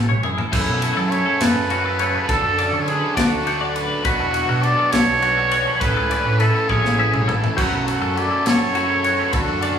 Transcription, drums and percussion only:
0.09 mid tom
0.23 floor tom
0.38 floor tom
0.53 kick, crash
0.82 ride
1.12 ride
1.41 snare, ride
1.70 ride
1.99 ride
2.29 kick, ride
2.58 ride
2.88 ride
3.17 kick, snare, ride
3.47 ride
3.76 ride
4.05 kick, ride
4.34 ride
4.63 ride
4.92 snare, ride
5.22 ride
5.51 ride
5.81 kick, ride
6.11 ride
6.40 ride
6.69 kick, high tom
6.85 snare
7.14 mid tom
7.29 floor tom
7.44 floor tom
7.58 kick, crash
7.88 ride
8.17 ride
8.46 snare, ride
8.75 ride
9.04 ride
9.33 kick, ride
9.62 ride

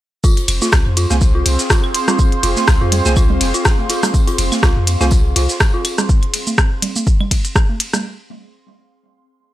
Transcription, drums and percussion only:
0.24 kick, tambourine, shaker
0.37 closed hi-hat
0.48 closed hi-hat, ride, tambourine, claves
0.62 snare, high conga, shaker
0.72 kick, cross-stick, snare, tambourine, shaker
0.97 closed hi-hat, ride, tambourine
1.10 snare, high conga, shaker
1.21 kick, tambourine, shaker
1.46 closed hi-hat, ride, tambourine
1.59 snare, closed hi-hat, shaker
1.70 kick, cross-stick, snare, tambourine, shaker
1.84 claves
1.95 closed hi-hat, ride, tambourine
2.08 cross-stick, low conga, shaker
2.19 kick, tambourine, shaker
2.32 closed hi-hat
2.43 closed hi-hat, ride, tambourine
2.56 snare, high conga, shaker
2.67 kick, cross-stick, snare, tambourine, shaker
2.92 closed hi-hat, ride, tambourine, low conga
3.05 snare, high conga, shaker
3.16 kick, tambourine, claves, shaker
3.30 low conga
3.41 snare, closed hi-hat, ride, tambourine
3.54 closed hi-hat, shaker
3.65 kick, cross-stick, snare, tambourine, shaker
3.79 high conga
3.89 snare, closed hi-hat, ride, tambourine
4.03 cross-stick, closed hi-hat, high conga, low conga, shaker
4.14 kick, tambourine, shaker
4.27 closed hi-hat
4.38 closed hi-hat, ride, tambourine
4.52 snare, high conga, claves, shaker
4.63 kick, cross-stick, snare, tambourine, shaker
4.87 closed hi-hat, ride, tambourine
5.01 snare, high conga, shaker
5.11 kick, tambourine, shaker
5.36 closed hi-hat, ride, tambourine
5.49 snare, closed hi-hat, shaker
5.60 kick, cross-stick, snare, tambourine, shaker
5.85 closed hi-hat, ride, tambourine, claves
5.98 cross-stick, low conga, shaker
6.09 kick, shaker
6.23 closed hi-hat
6.34 closed hi-hat, ride
6.47 high conga, shaker
6.58 kick, cross-stick, shaker
6.82 closed hi-hat, ride, low conga
6.96 high conga, shaker
7.07 kick, shaker
7.21 low conga, claves
7.31 kick, closed hi-hat, ride
7.45 closed hi-hat, shaker
7.56 kick, cross-stick, shaker
7.69 high conga
7.80 closed hi-hat, ride
7.93 cross-stick, high conga, low conga, shaker

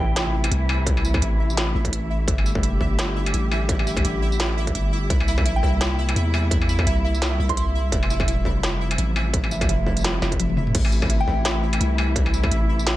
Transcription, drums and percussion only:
0.16 snare, closed hi-hat
0.44 closed hi-hat, struck metal
0.52 closed hi-hat
0.69 struck metal
0.87 kick, closed hi-hat
0.97 struck metal
1.05 tambourine
1.14 kick, struck metal
1.22 closed hi-hat
1.50 tambourine
1.57 snare, closed hi-hat
1.85 kick, closed hi-hat
1.93 closed hi-hat
2.28 kick, closed hi-hat
2.38 struck metal
2.46 tambourine
2.55 kick
2.63 closed hi-hat
2.81 kick
2.99 snare, closed hi-hat
3.26 closed hi-hat, struck metal
3.34 closed hi-hat
3.52 struck metal
3.69 kick, closed hi-hat
3.79 struck metal
3.87 tambourine
3.97 kick, closed hi-hat, struck metal
4.05 closed hi-hat
4.32 tambourine
4.40 snare, closed hi-hat
4.67 kick, closed hi-hat
4.75 closed hi-hat
5.10 kick, closed hi-hat
5.20 struck metal
5.28 tambourine
5.38 kick, struck metal
5.46 closed hi-hat
5.63 kick
5.81 snare, closed hi-hat
6.09 closed hi-hat, struck metal
6.16 closed hi-hat
6.34 struck metal
6.51 kick, closed hi-hat
6.62 struck metal
6.69 tambourine
6.79 kick, struck metal
6.87 closed hi-hat
7.14 tambourine
7.22 snare, closed hi-hat
7.49 kick, closed hi-hat
7.57 closed hi-hat
7.92 kick, closed hi-hat
8.03 struck metal
8.10 tambourine
8.20 kick, struck metal
8.28 closed hi-hat
8.45 kick
8.63 snare, closed hi-hat
8.91 closed hi-hat, struck metal
8.98 closed hi-hat
9.16 struck metal
9.34 kick, closed hi-hat
9.44 struck metal
9.51 tambourine
9.61 kick, closed hi-hat, tambourine, struck metal
9.69 closed hi-hat
9.87 kick
9.97 closed hi-hat, tambourine
9.99 tambourine
10.01 tambourine
10.03 snare, closed hi-hat, tambourine
10.22 snare
10.32 kick, closed hi-hat
10.40 closed hi-hat, high tom
10.50 high tom
10.57 mid tom
10.67 mid tom
10.75 kick, closed hi-hat, crash
10.85 struck metal
10.92 tambourine
11.02 kick, struck metal
11.10 closed hi-hat
11.28 kick
11.45 snare, closed hi-hat
11.73 closed hi-hat, struck metal
11.81 closed hi-hat
11.98 struck metal
12.16 kick, closed hi-hat
12.26 struck metal
12.34 tambourine
12.44 kick, struck metal
12.52 closed hi-hat
12.79 tambourine
12.87 snare, closed hi-hat

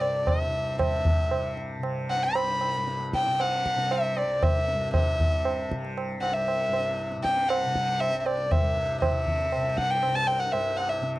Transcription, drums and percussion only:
0.01 tabla na
0.27 tabla na, tabla ge
0.53 tabla te
0.79 tabla na, tabla ge
1.05 tabla ge
1.31 tabla na
1.57 tabla te
1.83 tabla na
2.10 tabla na
2.35 tabla na
2.61 tabla na
2.88 tabla te
3.01 tabla te
3.13 tabla ke
3.27 tabla te
3.40 tabla na
3.66 tabla ke
3.78 tabla te
3.91 tabla na
4.17 tabla na
4.43 tabla na, tabla ge
4.68 tabla te
4.94 tabla na, tabla ge
5.20 tabla ge
5.45 tabla na
5.71 tabla ke
5.85 tabla te
5.98 tabla na
6.23 tabla na
6.48 tabla na
6.73 tabla na
6.99 tabla te
7.12 tabla te
7.25 tabla ke
7.37 tabla te
7.50 tabla na
7.75 tabla ke
7.88 tabla te
8.01 tabla na
8.26 tabla na
8.52 tabla na, tabla ge
8.77 tabla te
9.02 tabla na, tabla ge
9.27 tabla ge
9.52 tabla na
9.78 tabla ke
9.90 tabla te
10.03 tabla na
10.28 tabla na
10.53 tabla na
10.79 tabla na
11.03 tabla te
11.16 tabla te

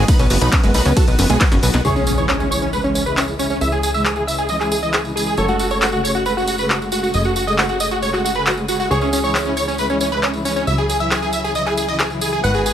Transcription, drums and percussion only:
0.08 kick, closed hi-hat, ride, tambourine
0.19 closed hi-hat, tambourine
0.30 open hi-hat, tambourine
0.41 closed hi-hat, tambourine
0.52 kick, clap, closed hi-hat, ride, tambourine
0.63 closed hi-hat, tambourine
0.74 open hi-hat, tambourine
0.85 closed hi-hat, tambourine
0.97 kick, closed hi-hat, ride, tambourine
1.08 closed hi-hat, tambourine
1.19 open hi-hat, tambourine
1.29 closed hi-hat, tambourine
1.41 kick, snare, clap, closed hi-hat, ride, tambourine
1.52 snare, closed hi-hat, tambourine
1.63 open hi-hat, tambourine
1.73 snare, closed hi-hat, tambourine
1.85 tambourine
1.96 tambourine
2.07 tambourine
2.18 tambourine
2.29 clap, tambourine
2.40 tambourine
2.52 tambourine
2.73 tambourine
2.84 tambourine
2.95 tambourine
3.06 tambourine
3.17 clap, tambourine
3.28 tambourine
3.39 tambourine
3.50 tambourine
3.61 tambourine
3.72 tambourine
3.83 tambourine
3.94 tambourine
4.05 clap, tambourine
4.16 tambourine
4.28 tambourine
4.38 tambourine
4.49 tambourine
4.61 clap, tambourine
4.72 tambourine
4.83 tambourine
4.93 clap, tambourine
5.05 tambourine
5.17 tambourine
5.26 tambourine
5.37 tambourine
5.48 tambourine
5.59 tambourine
5.71 tambourine
5.82 clap, tambourine
5.92 tambourine
6.05 tambourine
6.26 tambourine
6.38 tambourine
6.47 tambourine
6.58 tambourine
6.70 clap, tambourine
6.82 tambourine
6.92 tambourine
7.04 tambourine
7.14 tambourine
7.25 tambourine
7.36 tambourine
7.48 tambourine
7.58 clap, tambourine
7.69 tambourine
7.80 tambourine
7.91 tambourine
8.02 tambourine
8.13 clap, tambourine
8.26 tambourine
8.35 tambourine
8.46 clap, tambourine
8.57 tambourine
8.68 tambourine
8.80 tambourine
8.91 tambourine
9.01 tambourine
9.13 tambourine
9.24 tambourine
9.35 clap, tambourine
9.45 tambourine
9.57 tambourine
9.68 tambourine
9.78 tambourine
9.90 tambourine
10.01 tambourine
10.12 tambourine
10.23 clap, tambourine
10.34 tambourine
10.45 tambourine
10.56 tambourine
10.67 tambourine
10.78 tambourine
10.90 tambourine
11.00 tambourine
11.11 clap, tambourine
11.23 tambourine
11.33 tambourine
11.45 tambourine
11.55 tambourine
11.66 clap, tambourine
11.77 tambourine
11.88 tambourine
11.99 clap, tambourine
12.10 tambourine
12.21 tambourine
12.33 tambourine
12.44 tambourine
12.54 tambourine
12.66 tambourine

